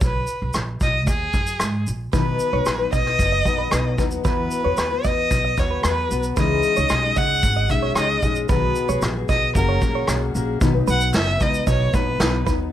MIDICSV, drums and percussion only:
0, 0, Header, 1, 2, 480
1, 0, Start_track
1, 0, Key_signature, 5, "major"
1, 0, Tempo, 530035
1, 11, Time_signature, 4, 2, 24, 8
1, 11521, End_track
2, 0, Start_track
2, 0, Title_t, "Drums"
2, 10, Note_on_c, 9, 82, 60
2, 12, Note_on_c, 9, 36, 119
2, 100, Note_off_c, 9, 82, 0
2, 102, Note_off_c, 9, 36, 0
2, 245, Note_on_c, 9, 82, 49
2, 335, Note_off_c, 9, 82, 0
2, 485, Note_on_c, 9, 82, 68
2, 491, Note_on_c, 9, 37, 88
2, 576, Note_off_c, 9, 82, 0
2, 581, Note_off_c, 9, 37, 0
2, 731, Note_on_c, 9, 82, 45
2, 733, Note_on_c, 9, 36, 79
2, 822, Note_off_c, 9, 82, 0
2, 823, Note_off_c, 9, 36, 0
2, 971, Note_on_c, 9, 36, 86
2, 972, Note_on_c, 9, 82, 78
2, 1061, Note_off_c, 9, 36, 0
2, 1063, Note_off_c, 9, 82, 0
2, 1209, Note_on_c, 9, 82, 45
2, 1211, Note_on_c, 9, 36, 75
2, 1300, Note_off_c, 9, 82, 0
2, 1301, Note_off_c, 9, 36, 0
2, 1328, Note_on_c, 9, 82, 50
2, 1419, Note_off_c, 9, 82, 0
2, 1446, Note_on_c, 9, 37, 99
2, 1453, Note_on_c, 9, 82, 76
2, 1536, Note_off_c, 9, 37, 0
2, 1543, Note_off_c, 9, 82, 0
2, 1694, Note_on_c, 9, 82, 53
2, 1784, Note_off_c, 9, 82, 0
2, 1931, Note_on_c, 9, 36, 108
2, 1933, Note_on_c, 9, 82, 67
2, 2022, Note_off_c, 9, 36, 0
2, 2023, Note_off_c, 9, 82, 0
2, 2168, Note_on_c, 9, 82, 50
2, 2259, Note_off_c, 9, 82, 0
2, 2407, Note_on_c, 9, 82, 70
2, 2412, Note_on_c, 9, 37, 95
2, 2497, Note_off_c, 9, 82, 0
2, 2503, Note_off_c, 9, 37, 0
2, 2651, Note_on_c, 9, 82, 50
2, 2652, Note_on_c, 9, 36, 78
2, 2742, Note_off_c, 9, 82, 0
2, 2743, Note_off_c, 9, 36, 0
2, 2772, Note_on_c, 9, 37, 33
2, 2863, Note_off_c, 9, 37, 0
2, 2889, Note_on_c, 9, 36, 83
2, 2893, Note_on_c, 9, 82, 73
2, 2980, Note_off_c, 9, 36, 0
2, 2984, Note_off_c, 9, 82, 0
2, 3129, Note_on_c, 9, 36, 77
2, 3133, Note_on_c, 9, 82, 44
2, 3220, Note_off_c, 9, 36, 0
2, 3224, Note_off_c, 9, 82, 0
2, 3363, Note_on_c, 9, 37, 108
2, 3370, Note_on_c, 9, 82, 76
2, 3454, Note_off_c, 9, 37, 0
2, 3460, Note_off_c, 9, 82, 0
2, 3608, Note_on_c, 9, 36, 80
2, 3610, Note_on_c, 9, 82, 52
2, 3698, Note_off_c, 9, 36, 0
2, 3700, Note_off_c, 9, 82, 0
2, 3722, Note_on_c, 9, 82, 42
2, 3812, Note_off_c, 9, 82, 0
2, 3848, Note_on_c, 9, 36, 116
2, 3848, Note_on_c, 9, 82, 61
2, 3938, Note_off_c, 9, 82, 0
2, 3939, Note_off_c, 9, 36, 0
2, 4084, Note_on_c, 9, 82, 51
2, 4174, Note_off_c, 9, 82, 0
2, 4323, Note_on_c, 9, 82, 67
2, 4328, Note_on_c, 9, 37, 93
2, 4413, Note_off_c, 9, 82, 0
2, 4419, Note_off_c, 9, 37, 0
2, 4567, Note_on_c, 9, 82, 46
2, 4570, Note_on_c, 9, 36, 73
2, 4658, Note_off_c, 9, 82, 0
2, 4661, Note_off_c, 9, 36, 0
2, 4809, Note_on_c, 9, 36, 88
2, 4810, Note_on_c, 9, 82, 80
2, 4899, Note_off_c, 9, 36, 0
2, 4901, Note_off_c, 9, 82, 0
2, 5049, Note_on_c, 9, 82, 46
2, 5050, Note_on_c, 9, 36, 77
2, 5139, Note_off_c, 9, 82, 0
2, 5141, Note_off_c, 9, 36, 0
2, 5283, Note_on_c, 9, 37, 107
2, 5290, Note_on_c, 9, 82, 73
2, 5374, Note_off_c, 9, 37, 0
2, 5381, Note_off_c, 9, 82, 0
2, 5533, Note_on_c, 9, 82, 51
2, 5623, Note_off_c, 9, 82, 0
2, 5642, Note_on_c, 9, 82, 47
2, 5732, Note_off_c, 9, 82, 0
2, 5766, Note_on_c, 9, 82, 66
2, 5769, Note_on_c, 9, 36, 115
2, 5856, Note_off_c, 9, 82, 0
2, 5860, Note_off_c, 9, 36, 0
2, 6002, Note_on_c, 9, 82, 52
2, 6093, Note_off_c, 9, 82, 0
2, 6123, Note_on_c, 9, 82, 47
2, 6214, Note_off_c, 9, 82, 0
2, 6242, Note_on_c, 9, 82, 67
2, 6247, Note_on_c, 9, 37, 96
2, 6332, Note_off_c, 9, 82, 0
2, 6338, Note_off_c, 9, 37, 0
2, 6486, Note_on_c, 9, 82, 46
2, 6491, Note_on_c, 9, 36, 81
2, 6577, Note_off_c, 9, 82, 0
2, 6581, Note_off_c, 9, 36, 0
2, 6729, Note_on_c, 9, 36, 92
2, 6730, Note_on_c, 9, 82, 83
2, 6820, Note_off_c, 9, 36, 0
2, 6821, Note_off_c, 9, 82, 0
2, 6969, Note_on_c, 9, 82, 45
2, 6970, Note_on_c, 9, 36, 73
2, 7059, Note_off_c, 9, 82, 0
2, 7061, Note_off_c, 9, 36, 0
2, 7204, Note_on_c, 9, 37, 114
2, 7211, Note_on_c, 9, 82, 74
2, 7295, Note_off_c, 9, 37, 0
2, 7302, Note_off_c, 9, 82, 0
2, 7448, Note_on_c, 9, 82, 50
2, 7450, Note_on_c, 9, 36, 80
2, 7539, Note_off_c, 9, 82, 0
2, 7540, Note_off_c, 9, 36, 0
2, 7566, Note_on_c, 9, 82, 43
2, 7657, Note_off_c, 9, 82, 0
2, 7688, Note_on_c, 9, 82, 65
2, 7691, Note_on_c, 9, 36, 123
2, 7779, Note_off_c, 9, 82, 0
2, 7782, Note_off_c, 9, 36, 0
2, 7929, Note_on_c, 9, 82, 54
2, 8019, Note_off_c, 9, 82, 0
2, 8050, Note_on_c, 9, 82, 48
2, 8140, Note_off_c, 9, 82, 0
2, 8167, Note_on_c, 9, 82, 63
2, 8173, Note_on_c, 9, 37, 96
2, 8258, Note_off_c, 9, 82, 0
2, 8264, Note_off_c, 9, 37, 0
2, 8412, Note_on_c, 9, 82, 47
2, 8413, Note_on_c, 9, 36, 88
2, 8503, Note_off_c, 9, 82, 0
2, 8504, Note_off_c, 9, 36, 0
2, 8650, Note_on_c, 9, 36, 93
2, 8653, Note_on_c, 9, 82, 78
2, 8740, Note_off_c, 9, 36, 0
2, 8744, Note_off_c, 9, 82, 0
2, 8890, Note_on_c, 9, 82, 47
2, 8891, Note_on_c, 9, 36, 79
2, 8980, Note_off_c, 9, 82, 0
2, 8982, Note_off_c, 9, 36, 0
2, 9124, Note_on_c, 9, 37, 105
2, 9131, Note_on_c, 9, 82, 78
2, 9214, Note_off_c, 9, 37, 0
2, 9221, Note_off_c, 9, 82, 0
2, 9376, Note_on_c, 9, 82, 54
2, 9466, Note_off_c, 9, 82, 0
2, 9611, Note_on_c, 9, 36, 125
2, 9612, Note_on_c, 9, 82, 72
2, 9702, Note_off_c, 9, 36, 0
2, 9703, Note_off_c, 9, 82, 0
2, 9849, Note_on_c, 9, 82, 57
2, 9940, Note_off_c, 9, 82, 0
2, 9967, Note_on_c, 9, 82, 54
2, 10058, Note_off_c, 9, 82, 0
2, 10085, Note_on_c, 9, 82, 75
2, 10086, Note_on_c, 9, 39, 80
2, 10091, Note_on_c, 9, 38, 112
2, 10176, Note_off_c, 9, 82, 0
2, 10177, Note_off_c, 9, 39, 0
2, 10181, Note_off_c, 9, 38, 0
2, 10330, Note_on_c, 9, 82, 52
2, 10331, Note_on_c, 9, 36, 87
2, 10421, Note_off_c, 9, 36, 0
2, 10421, Note_off_c, 9, 82, 0
2, 10451, Note_on_c, 9, 82, 60
2, 10541, Note_off_c, 9, 82, 0
2, 10568, Note_on_c, 9, 36, 90
2, 10570, Note_on_c, 9, 82, 88
2, 10659, Note_off_c, 9, 36, 0
2, 10661, Note_off_c, 9, 82, 0
2, 10810, Note_on_c, 9, 36, 85
2, 10811, Note_on_c, 9, 82, 55
2, 10901, Note_off_c, 9, 36, 0
2, 10902, Note_off_c, 9, 82, 0
2, 11048, Note_on_c, 9, 38, 118
2, 11055, Note_on_c, 9, 39, 100
2, 11055, Note_on_c, 9, 82, 80
2, 11138, Note_off_c, 9, 38, 0
2, 11145, Note_off_c, 9, 39, 0
2, 11145, Note_off_c, 9, 82, 0
2, 11289, Note_on_c, 9, 36, 90
2, 11293, Note_on_c, 9, 82, 56
2, 11380, Note_off_c, 9, 36, 0
2, 11384, Note_off_c, 9, 82, 0
2, 11521, End_track
0, 0, End_of_file